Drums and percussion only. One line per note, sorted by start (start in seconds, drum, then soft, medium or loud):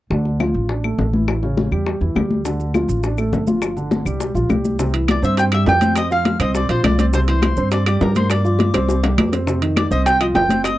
0.11 high bongo medium
0.11 high conga soft
0.25 high bongo soft
0.25 high conga soft
0.40 high bongo medium
0.40 high conga medium
0.40 claves medium
0.55 high conga soft
0.69 high bongo medium
0.69 high conga soft
0.84 high bongo soft
0.84 high conga soft
0.84 claves medium
0.99 high bongo soft
0.99 low bongo medium
0.99 high conga soft
1.13 high bongo soft
1.13 high conga medium
1.28 high bongo medium
1.28 high conga soft
1.28 claves medium
1.43 high bongo soft
1.43 high conga soft
1.57 high bongo medium
1.57 high conga medium
1.72 claves medium
1.86 high bongo medium
1.86 high conga soft
2.01 high bongo soft
2.01 high conga soft
2.16 high bongo soft
2.16 low bongo medium
2.16 high conga medium
2.16 claves medium
2.30 high bongo soft
2.30 high conga medium
2.45 high bongo medium
2.45 high conga soft
2.45 maracas medium
2.60 high bongo soft
2.60 high conga soft
2.60 maracas soft
2.74 high bongo medium
2.74 high conga medium
2.74 claves medium
2.74 maracas soft
2.89 high conga soft
2.89 maracas medium
3.03 high bongo medium
3.03 high conga soft
3.03 maracas medium
3.18 high bongo soft
3.18 high conga soft
3.18 claves medium
3.18 maracas soft
3.33 high bongo soft
3.33 low bongo medium
3.33 high conga soft
3.33 maracas soft
3.47 high bongo soft
3.47 high conga medium
3.47 maracas medium
3.62 high bongo medium
3.62 high conga soft
3.62 claves medium
3.62 maracas medium
3.77 high bongo soft
3.77 high conga soft
3.77 maracas soft
3.91 high bongo medium
3.91 high conga medium
3.91 maracas soft
4.06 claves medium
4.06 maracas medium
4.20 high bongo medium
4.20 high conga soft
4.20 maracas medium
4.35 high bongo soft
4.35 high conga soft
4.35 maracas soft
4.50 high bongo soft
4.50 low bongo medium
4.50 high conga medium
4.50 claves medium
4.50 maracas soft
4.65 high bongo soft
4.65 high conga medium
4.65 maracas medium
4.79 high bongo medium
4.79 maracas medium
4.94 high bongo soft
4.94 high conga soft
4.94 high timbale medium
4.94 maracas soft
5.08 high bongo medium
5.08 high conga loud
5.08 high timbale medium
5.08 claves medium
5.08 maracas soft
5.23 high conga soft
5.23 maracas medium
5.37 high bongo medium
5.37 high conga soft
5.37 high timbale medium
5.37 maracas medium
5.52 high bongo soft
5.52 high conga soft
5.52 high timbale medium
5.52 claves medium
5.52 maracas soft
5.66 high bongo soft
5.66 low bongo medium
5.66 high conga soft
5.66 low timbale medium
5.66 maracas soft
5.81 high bongo soft
5.81 high conga medium
5.81 high timbale medium
5.81 maracas medium
5.96 high bongo medium
5.96 high conga soft
5.96 high timbale medium
5.96 claves medium
5.96 maracas medium
6.11 high bongo soft
6.11 high conga soft
6.11 maracas soft
6.25 high bongo medium
6.25 high conga loud
6.25 high timbale medium
6.25 maracas soft
6.40 high timbale medium
6.40 claves medium
6.40 maracas medium
6.55 high bongo medium
6.55 high conga soft
6.55 maracas medium
6.69 high bongo soft
6.69 high conga soft
6.69 high timbale medium
6.69 maracas soft
6.84 high bongo soft
6.84 low bongo medium
6.84 high conga medium
6.84 high timbale loud
6.84 claves medium
6.84 maracas soft
6.99 high bongo soft
6.99 high conga medium
6.99 high timbale medium
6.99 maracas medium
7.13 high bongo medium
7.13 high conga soft
7.13 maracas medium
7.28 high bongo soft
7.28 high conga soft
7.28 high timbale medium
7.28 maracas soft
7.42 high bongo medium
7.42 high conga loud
7.42 high timbale medium
7.42 claves medium
7.42 maracas soft
7.57 high conga soft
7.57 maracas medium
7.72 high bongo medium
7.72 high conga soft
7.72 high timbale medium
7.72 maracas medium
7.86 high bongo soft
7.86 high conga soft
7.86 high timbale medium
7.86 claves medium
7.86 maracas soft
8.01 high bongo soft
8.01 low bongo medium
8.01 high conga soft
8.01 low timbale medium
8.01 maracas soft
8.15 high bongo soft
8.15 high conga medium
8.15 high timbale medium
8.15 maracas medium
8.30 high bongo medium
8.30 high conga soft
8.30 high timbale medium
8.30 claves medium
8.30 maracas medium
8.44 high bongo soft
8.44 high conga soft
8.44 maracas soft
8.59 high bongo medium
8.59 high conga medium
8.59 high timbale medium
8.59 maracas soft
8.74 high bongo medium
8.74 high timbale medium
8.74 claves medium
8.74 maracas medium
8.89 high bongo medium
8.89 high conga soft
8.89 maracas medium
9.03 low bongo medium
9.03 high conga soft
9.03 high timbale medium
9.03 maracas soft
9.18 high conga medium
9.18 high timbale medium
9.18 low timbale medium
9.18 claves medium
9.18 maracas soft
9.33 low bongo medium
9.33 high timbale medium
9.33 maracas medium
9.47 high bongo medium
9.47 high conga soft
9.47 maracas medium
9.62 high bongo soft
9.62 high conga soft
9.62 high timbale medium
9.62 maracas soft
9.76 high bongo medium
9.76 high conga loud
9.76 high timbale medium
9.76 claves medium
9.76 maracas soft
9.91 high conga soft
9.91 maracas medium
10.06 high bongo medium
10.06 high conga soft
10.06 high timbale medium
10.06 maracas medium
10.21 high bongo soft
10.21 high conga soft
10.21 high timbale medium
10.21 claves medium
10.21 maracas soft
10.35 high bongo soft
10.35 low bongo medium
10.35 high conga soft
10.35 low timbale medium
10.35 maracas soft
10.49 high bongo soft
10.49 high conga medium
10.49 high timbale medium
10.49 maracas medium
10.64 high bongo medium
10.64 high conga soft
10.64 high timbale medium
10.64 claves medium
10.64 maracas medium